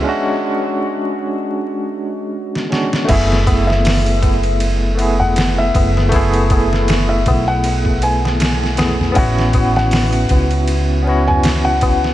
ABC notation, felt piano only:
X:1
M:4/4
L:1/16
Q:"Swing 16ths" 1/4=79
K:F#m
V:1 name="Felt piano"
z16 | e3 e4 z4 f2 e3- | e z4 e2 f3 g4- g z | f3 f4 z4 g2 f3 |]